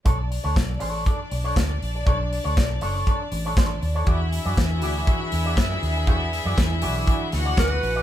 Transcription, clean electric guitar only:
X:1
M:4/4
L:1/16
Q:1/4=120
K:Bdor
V:1 name="Clean electric guitar"
[DAc]2 z [DAc] z2 [DAc] [DAc] [DAd]2 z [DAc] z4 | [DAc]2 z [DAc] z2 [DAc] [DAc] [DAc]2 z [DAc] [DAc]2 z [DAc] | [FGd]2 z [FGd] z2 [FGd] [FGd] [FGe]2 z [FGd] z4 | [FGd]2 z [FGd] z2 [FGd] [FGd] [FGd]2 z [FGd] [FGd]2 z [FGd] |]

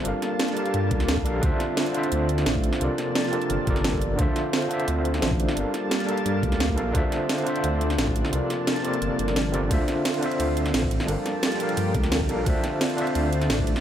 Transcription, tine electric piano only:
X:1
M:4/4
L:1/8
Q:1/4=174
K:Dm
V:1 name="Tine electric piano"
[G,DABf]3 [G,DABf]4 [G,DABf] | [D,DFce]3 [D,DFce]4- [D,DFce] | [C,CFABd]3 [C,CFABd]2 [C,CFABd]3 | [D,DFce]3 [D,DFce]4- [D,DFce] |
[G,DABf]3 [G,DABf]4 [G,DABf] | [D,DFce]3 [D,DFce]4- [D,DFce] | [C,CFABd]3 [C,CFABd]4 [C,CFABd] | [D,DFce]3 [D,DFce]4- [D,DFce] |
[G,DABf]3 [G,DABf]4 [G,DABf] | [D,DFce]3 [D,DFce]4- [D,DFce] |]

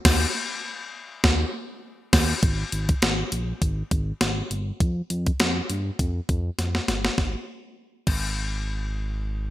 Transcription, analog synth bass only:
X:1
M:4/4
L:1/8
Q:"Swing 16ths" 1/4=101
K:Fm
V:1 name="Analog synth bass" clef=bass
E,, z3 E,, z2 E,, | A,,, A,,, A,,, B,,, A,,, A,,, A,,, G,,, | F,, F,, F,, G,, F,, F,, F,, G,,, | A,,, z2 A,,,4- A,,, |]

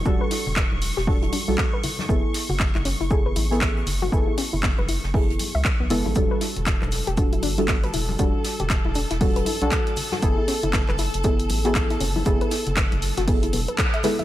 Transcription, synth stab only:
X:1
M:4/4
L:1/16
Q:"Swing 16ths" 1/4=118
K:F#phr
V:1 name="Synth stab"
[G,DFA]8 [G,DFA]3 [G,DFA]3 z2 | [B,E^GA]8 [B,EGA]3 [B,EGA]4- [B,EGA] | [B,E^GA]8 [B,EGA]3 z3 [^G,B,EA]2 | [G,DFA]8 [G,DFA]3 [G,DFA]4- [G,DFA] |
[G,DFA]8 [G,DFA]3 [G,DFA]3 z2 | [B,E^GA]8 [B,EGA]3 [B,EGA]4- [B,EGA] | [B,E^GA]8 [B,EGA]3 z3 [^G,B,EA]2 |]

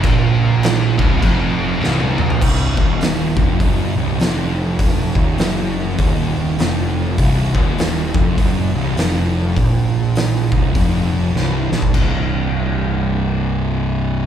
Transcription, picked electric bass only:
X:1
M:4/4
L:1/8
Q:"Swing" 1/4=101
K:Cm
V:1 name="Picked electric bass" clef=bass
B,,,3 C,,, F,,,2 C,,, B,,, | C,,, E,,,2 F,,, ^F,,, C,,, =F,,,2- | F,,, E,,, ^F,,,2 E,,,2 =F,,,2 | C,,, E,,,2 F,,, ^F,,, C,,, =F,,,2 |
B,,,3 C,,, F,,,2 C,,, B,,, | C,,,8 |]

